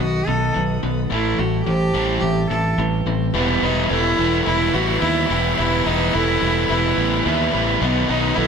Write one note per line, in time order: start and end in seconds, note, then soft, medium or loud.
0.00 0.21 B1 medium
0.00 0.25 B2 medium
0.00 0.27 B2 medium
0.00 0.25 D#3 medium
0.00 0.83 D#3 medium
0.00 0.54 F#3 medium
0.00 0.82 B3 medium
0.00 0.28 F#4 loud
0.00 1.07 B4 medium
0.00 0.56 D#5 medium
0.00 1.08 F#5 medium
0.00 1.08 D#6 medium
0.27 0.50 B1 medium
0.27 0.53 B2 medium
0.27 0.53 D#3 medium
0.27 1.11 D#4 medium
0.27 0.55 A4 loud
0.54 0.78 B1 loud
0.54 0.80 B2 medium
0.54 0.80 D#3 loud
0.54 1.11 F#3 medium
0.54 1.11 B4 medium
0.83 1.05 B1 medium
0.83 1.08 B2 medium
0.83 1.09 D#3 medium
0.83 1.11 B3 medium
1.10 1.34 A1 medium
1.10 1.37 A2 medium
1.10 2.51 A2 medium
1.10 1.37 E3 medium
1.10 1.38 A3 medium
1.10 1.40 E4 medium
1.10 3.32 A4 medium
1.10 1.67 A4 medium
1.10 3.33 G5 medium
1.10 3.32 A5 medium
1.38 1.61 A1 medium
1.38 1.65 A2 medium
1.38 1.65 E3 medium
1.38 1.93 G3 medium
1.38 1.64 F#4 medium
1.64 1.89 A1 medium
1.64 1.92 A2 medium
1.64 3.07 E3 medium
1.64 1.92 E3 medium
1.64 2.18 G4 loud
1.64 2.23 C5 medium
1.94 2.17 A1 loud
1.94 2.21 A2 medium
1.94 2.21 E3 medium
1.94 2.77 G3 medium
1.94 2.21 A3 loud
2.19 2.45 A1 loud
2.19 2.48 A2 medium
2.19 2.48 E3 medium
2.19 3.05 C4 medium
2.19 2.47 G4 loud
2.19 2.79 E5 medium
2.50 2.73 A1 medium
2.50 2.76 A2 medium
2.50 2.76 E3 medium
2.50 3.35 E4 medium
2.50 2.77 A4 loud
2.78 3.00 A1 loud
2.78 3.04 A2 medium
2.78 3.04 E3 medium
2.78 3.35 G3 medium
2.78 3.33 B4 medium
3.06 3.29 A1 medium
3.06 3.32 A2 medium
3.06 3.32 E3 medium
3.06 3.35 C4 medium
3.34 3.56 E1 medium
3.34 3.62 E3 loud
3.34 3.62 G3 medium
3.34 3.63 B3 loud
3.34 3.66 B3 loud
3.34 3.63 E4 loud
3.34 8.47 B4 medium
3.34 3.91 B4 loud
3.34 7.77 G5 medium
3.34 7.78 E6 medium
3.62 3.84 E1 medium
3.62 3.90 E3 medium
3.62 3.90 G3 medium
3.62 3.90 B3 medium
3.62 3.90 D#4 loud
3.62 3.91 E4 medium
3.90 4.12 E1 loud
3.90 4.17 E3 medium
3.90 4.18 G3 loud
3.90 4.18 B3 loud
3.90 4.43 E4 loud
3.90 4.19 E4 loud
3.90 4.47 A4 medium
4.17 4.41 E1 medium
4.17 4.45 E3 medium
4.17 4.45 G3 loud
4.17 4.46 B3 loud
4.17 4.46 E4 loud
4.46 4.69 E1 medium
4.46 4.72 E3 loud
4.46 4.72 G3 loud
4.46 4.74 B3 loud
4.46 4.75 E4 loud
4.46 4.73 E4 loud
4.46 5.02 B4 medium
4.73 4.96 A1 medium
4.73 4.99 E3 medium
4.73 5.00 G3 medium
4.73 5.02 B3 loud
4.73 5.01 E4 loud
4.73 5.01 F#4 loud
5.01 5.24 D#2 loud
5.01 5.28 E3 loud
5.01 5.29 G3 medium
5.01 5.30 B3 loud
5.01 5.28 E4 loud
5.01 5.30 E4 loud
5.01 5.58 E5 medium
5.29 5.52 E1 medium
5.29 5.56 E3 medium
5.29 5.57 G3 medium
5.29 5.58 B3 medium
5.29 5.55 E4 loud
5.29 5.58 E4 loud
5.57 5.81 E1 loud
5.57 5.84 E3 loud
5.57 5.84 G3 medium
5.57 5.86 B3 loud
5.57 5.87 E4 loud
5.57 5.86 E4 loud
5.57 6.15 B4 medium
5.85 6.08 E1 medium
5.85 6.12 E3 medium
5.85 6.12 G3 loud
5.85 6.14 B3 medium
5.85 6.15 D#4 loud
5.85 6.13 E4 medium
6.13 6.36 E1 loud
6.13 6.40 E3 medium
6.13 6.40 G3 medium
6.13 6.42 B3 loud
6.13 6.68 E4 loud
6.13 6.41 E4 loud
6.13 6.70 A4 loud
6.41 6.64 E1 loud
6.41 6.68 E3 loud
6.41 6.68 G3 medium
6.41 6.68 B3 medium
6.41 6.69 E4 loud
6.69 6.92 E1 medium
6.69 6.96 E3 loud
6.69 6.96 G3 loud
6.69 6.97 B3 loud
6.69 7.21 E4 loud
6.69 6.97 E4 loud
6.69 7.26 B4 medium
6.97 7.19 A1 medium
6.97 7.24 E3 medium
6.97 7.25 G3 medium
6.97 7.25 B3 loud
6.97 7.26 E4 loud
7.25 7.48 D#2 loud
7.25 7.52 E3 loud
7.25 7.52 G3 loud
7.25 7.53 B3 loud
7.25 7.53 E4 loud
7.25 7.82 E5 medium
7.53 7.76 A1 medium
7.53 7.80 E3 medium
7.53 7.80 G3 loud
7.53 7.80 B3 medium
7.53 7.80 E4 medium
7.80 8.03 B1 loud
7.80 8.07 B2 loud
7.80 8.08 D#3 loud
7.80 8.08 F#3 loud
7.80 8.11 B3 loud
7.80 8.08 B3 loud
7.80 8.09 D#4 loud
7.80 8.37 B4 medium
7.80 8.47 F#5 medium
7.80 8.47 D#6 medium
8.08 8.31 B1 medium
8.08 8.34 B2 medium
8.08 8.35 D#3 medium
8.08 8.35 F#3 loud
8.08 8.35 B3 medium
8.08 8.36 D#4 medium
8.08 8.38 D#4 loud
8.35 8.47 B1 loud
8.35 8.47 B2 medium
8.35 8.47 D#3 medium
8.35 8.47 F#3 loud
8.35 8.47 B3 loud
8.35 8.47 D#4 loud
8.35 8.47 E4 loud
8.35 8.47 A4 loud